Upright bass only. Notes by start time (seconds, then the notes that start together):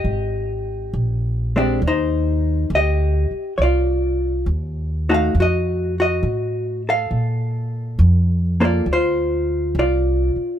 0.04 G#1
0.93 A#1
1.82 D#2
2.70 D2
3.31 muted upright bass stroke
3.58 C2
4.46 D#2
5.35 F2
6.23 A2
7.11 A#2
7.99 F2
8.86 D2
9.75 C2
10.36 muted upright bass stroke